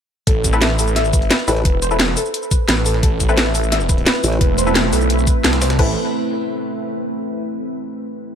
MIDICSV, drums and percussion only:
0, 0, Header, 1, 2, 480
1, 0, Start_track
1, 0, Key_signature, 0, "minor"
1, 0, Tempo, 344828
1, 377, Time_signature, 4, 2, 24, 8
1, 11623, End_track
2, 0, Start_track
2, 0, Title_t, "Drums"
2, 376, Note_on_c, 9, 42, 89
2, 377, Note_off_c, 9, 42, 0
2, 377, Note_on_c, 9, 36, 120
2, 377, Note_on_c, 9, 42, 99
2, 516, Note_off_c, 9, 36, 0
2, 516, Note_off_c, 9, 42, 0
2, 617, Note_on_c, 9, 36, 64
2, 617, Note_on_c, 9, 42, 70
2, 618, Note_off_c, 9, 42, 0
2, 618, Note_on_c, 9, 42, 73
2, 618, Note_on_c, 9, 82, 63
2, 738, Note_off_c, 9, 82, 0
2, 738, Note_on_c, 9, 82, 29
2, 756, Note_off_c, 9, 36, 0
2, 757, Note_off_c, 9, 42, 0
2, 857, Note_on_c, 9, 38, 120
2, 857, Note_on_c, 9, 42, 96
2, 877, Note_off_c, 9, 82, 0
2, 977, Note_off_c, 9, 38, 0
2, 977, Note_on_c, 9, 38, 49
2, 996, Note_off_c, 9, 42, 0
2, 1097, Note_on_c, 9, 42, 71
2, 1098, Note_on_c, 9, 46, 74
2, 1098, Note_on_c, 9, 82, 62
2, 1116, Note_off_c, 9, 38, 0
2, 1218, Note_off_c, 9, 82, 0
2, 1218, Note_on_c, 9, 82, 30
2, 1236, Note_off_c, 9, 42, 0
2, 1237, Note_off_c, 9, 46, 0
2, 1337, Note_on_c, 9, 38, 38
2, 1337, Note_on_c, 9, 42, 101
2, 1357, Note_off_c, 9, 82, 0
2, 1458, Note_on_c, 9, 82, 30
2, 1477, Note_off_c, 9, 38, 0
2, 1477, Note_off_c, 9, 42, 0
2, 1577, Note_off_c, 9, 82, 0
2, 1577, Note_on_c, 9, 42, 71
2, 1577, Note_on_c, 9, 82, 60
2, 1578, Note_on_c, 9, 36, 108
2, 1697, Note_off_c, 9, 42, 0
2, 1697, Note_on_c, 9, 42, 45
2, 1717, Note_off_c, 9, 36, 0
2, 1717, Note_off_c, 9, 82, 0
2, 1818, Note_off_c, 9, 42, 0
2, 1818, Note_on_c, 9, 38, 126
2, 1818, Note_on_c, 9, 42, 101
2, 1938, Note_off_c, 9, 42, 0
2, 1938, Note_on_c, 9, 42, 46
2, 1957, Note_off_c, 9, 38, 0
2, 2058, Note_off_c, 9, 42, 0
2, 2058, Note_on_c, 9, 42, 67
2, 2058, Note_on_c, 9, 46, 76
2, 2058, Note_on_c, 9, 82, 66
2, 2178, Note_off_c, 9, 42, 0
2, 2178, Note_on_c, 9, 42, 46
2, 2197, Note_off_c, 9, 46, 0
2, 2197, Note_off_c, 9, 82, 0
2, 2298, Note_off_c, 9, 42, 0
2, 2298, Note_on_c, 9, 36, 127
2, 2298, Note_on_c, 9, 42, 88
2, 2437, Note_off_c, 9, 36, 0
2, 2437, Note_off_c, 9, 42, 0
2, 2538, Note_on_c, 9, 42, 67
2, 2538, Note_on_c, 9, 82, 63
2, 2659, Note_off_c, 9, 82, 0
2, 2659, Note_on_c, 9, 82, 28
2, 2678, Note_off_c, 9, 42, 0
2, 2778, Note_on_c, 9, 38, 122
2, 2778, Note_on_c, 9, 42, 87
2, 2779, Note_off_c, 9, 38, 0
2, 2779, Note_off_c, 9, 42, 0
2, 2779, Note_on_c, 9, 38, 127
2, 2779, Note_on_c, 9, 42, 99
2, 2798, Note_off_c, 9, 82, 0
2, 2899, Note_off_c, 9, 38, 0
2, 2899, Note_on_c, 9, 38, 38
2, 2918, Note_off_c, 9, 42, 0
2, 3017, Note_on_c, 9, 42, 73
2, 3018, Note_on_c, 9, 46, 77
2, 3018, Note_on_c, 9, 82, 61
2, 3038, Note_off_c, 9, 38, 0
2, 3139, Note_off_c, 9, 82, 0
2, 3139, Note_on_c, 9, 82, 28
2, 3156, Note_off_c, 9, 42, 0
2, 3157, Note_off_c, 9, 46, 0
2, 3258, Note_on_c, 9, 42, 105
2, 3278, Note_off_c, 9, 82, 0
2, 3379, Note_on_c, 9, 82, 28
2, 3398, Note_off_c, 9, 42, 0
2, 3498, Note_off_c, 9, 82, 0
2, 3498, Note_on_c, 9, 42, 72
2, 3498, Note_on_c, 9, 82, 61
2, 3499, Note_on_c, 9, 36, 113
2, 3637, Note_off_c, 9, 82, 0
2, 3638, Note_off_c, 9, 36, 0
2, 3638, Note_off_c, 9, 42, 0
2, 3738, Note_on_c, 9, 38, 127
2, 3738, Note_on_c, 9, 42, 100
2, 3858, Note_off_c, 9, 38, 0
2, 3858, Note_on_c, 9, 38, 49
2, 3878, Note_off_c, 9, 42, 0
2, 3978, Note_on_c, 9, 42, 66
2, 3979, Note_on_c, 9, 46, 76
2, 3979, Note_on_c, 9, 82, 62
2, 3998, Note_off_c, 9, 38, 0
2, 4098, Note_on_c, 9, 38, 53
2, 4117, Note_off_c, 9, 42, 0
2, 4118, Note_off_c, 9, 46, 0
2, 4118, Note_off_c, 9, 82, 0
2, 4218, Note_on_c, 9, 36, 123
2, 4219, Note_on_c, 9, 42, 93
2, 4237, Note_off_c, 9, 38, 0
2, 4357, Note_off_c, 9, 36, 0
2, 4358, Note_off_c, 9, 42, 0
2, 4458, Note_on_c, 9, 36, 68
2, 4458, Note_on_c, 9, 42, 72
2, 4458, Note_on_c, 9, 82, 58
2, 4578, Note_off_c, 9, 82, 0
2, 4578, Note_on_c, 9, 82, 27
2, 4597, Note_off_c, 9, 36, 0
2, 4598, Note_off_c, 9, 42, 0
2, 4698, Note_on_c, 9, 38, 124
2, 4698, Note_on_c, 9, 42, 96
2, 4718, Note_off_c, 9, 82, 0
2, 4819, Note_off_c, 9, 38, 0
2, 4819, Note_on_c, 9, 38, 48
2, 4838, Note_off_c, 9, 42, 0
2, 4938, Note_on_c, 9, 46, 76
2, 4938, Note_on_c, 9, 82, 59
2, 4939, Note_on_c, 9, 42, 70
2, 4958, Note_off_c, 9, 38, 0
2, 5059, Note_off_c, 9, 82, 0
2, 5059, Note_on_c, 9, 82, 28
2, 5077, Note_off_c, 9, 46, 0
2, 5079, Note_off_c, 9, 42, 0
2, 5178, Note_on_c, 9, 38, 42
2, 5178, Note_on_c, 9, 42, 101
2, 5179, Note_off_c, 9, 42, 0
2, 5179, Note_on_c, 9, 42, 89
2, 5198, Note_off_c, 9, 82, 0
2, 5298, Note_on_c, 9, 82, 28
2, 5317, Note_off_c, 9, 38, 0
2, 5318, Note_off_c, 9, 42, 0
2, 5418, Note_off_c, 9, 82, 0
2, 5418, Note_on_c, 9, 36, 112
2, 5418, Note_on_c, 9, 42, 66
2, 5418, Note_on_c, 9, 82, 58
2, 5419, Note_off_c, 9, 42, 0
2, 5419, Note_on_c, 9, 42, 70
2, 5539, Note_off_c, 9, 42, 0
2, 5539, Note_on_c, 9, 42, 46
2, 5557, Note_off_c, 9, 36, 0
2, 5557, Note_off_c, 9, 82, 0
2, 5658, Note_off_c, 9, 42, 0
2, 5658, Note_on_c, 9, 38, 127
2, 5658, Note_on_c, 9, 42, 99
2, 5659, Note_off_c, 9, 38, 0
2, 5659, Note_off_c, 9, 42, 0
2, 5659, Note_on_c, 9, 38, 122
2, 5659, Note_on_c, 9, 42, 90
2, 5779, Note_off_c, 9, 42, 0
2, 5779, Note_on_c, 9, 42, 45
2, 5798, Note_off_c, 9, 38, 0
2, 5898, Note_on_c, 9, 46, 81
2, 5898, Note_on_c, 9, 82, 61
2, 5899, Note_off_c, 9, 42, 0
2, 5899, Note_on_c, 9, 42, 69
2, 6019, Note_off_c, 9, 42, 0
2, 6019, Note_on_c, 9, 42, 46
2, 6038, Note_off_c, 9, 46, 0
2, 6038, Note_off_c, 9, 82, 0
2, 6138, Note_off_c, 9, 42, 0
2, 6138, Note_on_c, 9, 36, 124
2, 6138, Note_on_c, 9, 42, 92
2, 6139, Note_off_c, 9, 42, 0
2, 6139, Note_on_c, 9, 42, 87
2, 6277, Note_off_c, 9, 36, 0
2, 6278, Note_off_c, 9, 42, 0
2, 6378, Note_on_c, 9, 42, 68
2, 6378, Note_on_c, 9, 82, 59
2, 6498, Note_off_c, 9, 82, 0
2, 6498, Note_on_c, 9, 82, 26
2, 6517, Note_off_c, 9, 42, 0
2, 6618, Note_on_c, 9, 38, 117
2, 6618, Note_on_c, 9, 42, 92
2, 6637, Note_off_c, 9, 82, 0
2, 6738, Note_off_c, 9, 38, 0
2, 6738, Note_on_c, 9, 38, 38
2, 6757, Note_off_c, 9, 42, 0
2, 6857, Note_on_c, 9, 42, 70
2, 6858, Note_on_c, 9, 46, 79
2, 6858, Note_on_c, 9, 82, 57
2, 6877, Note_off_c, 9, 38, 0
2, 6979, Note_off_c, 9, 82, 0
2, 6979, Note_on_c, 9, 82, 27
2, 6996, Note_off_c, 9, 42, 0
2, 6998, Note_off_c, 9, 46, 0
2, 7098, Note_on_c, 9, 42, 98
2, 7118, Note_off_c, 9, 82, 0
2, 7218, Note_on_c, 9, 82, 28
2, 7238, Note_off_c, 9, 42, 0
2, 7338, Note_on_c, 9, 36, 113
2, 7338, Note_on_c, 9, 42, 73
2, 7339, Note_off_c, 9, 42, 0
2, 7339, Note_off_c, 9, 82, 0
2, 7339, Note_on_c, 9, 42, 64
2, 7339, Note_on_c, 9, 82, 56
2, 7477, Note_off_c, 9, 36, 0
2, 7478, Note_off_c, 9, 42, 0
2, 7478, Note_off_c, 9, 82, 0
2, 7578, Note_on_c, 9, 38, 127
2, 7578, Note_on_c, 9, 42, 95
2, 7697, Note_off_c, 9, 38, 0
2, 7697, Note_off_c, 9, 42, 0
2, 7697, Note_on_c, 9, 38, 108
2, 7697, Note_on_c, 9, 42, 79
2, 7817, Note_off_c, 9, 38, 0
2, 7817, Note_off_c, 9, 42, 0
2, 7817, Note_on_c, 9, 38, 106
2, 7817, Note_on_c, 9, 42, 82
2, 7818, Note_on_c, 9, 46, 82
2, 7818, Note_on_c, 9, 82, 59
2, 7936, Note_off_c, 9, 38, 0
2, 7936, Note_off_c, 9, 42, 0
2, 7936, Note_on_c, 9, 38, 111
2, 7936, Note_on_c, 9, 42, 84
2, 7957, Note_off_c, 9, 46, 0
2, 7957, Note_off_c, 9, 82, 0
2, 8058, Note_on_c, 9, 36, 120
2, 8058, Note_on_c, 9, 49, 89
2, 8076, Note_off_c, 9, 38, 0
2, 8076, Note_off_c, 9, 42, 0
2, 8197, Note_off_c, 9, 36, 0
2, 8197, Note_off_c, 9, 49, 0
2, 11623, End_track
0, 0, End_of_file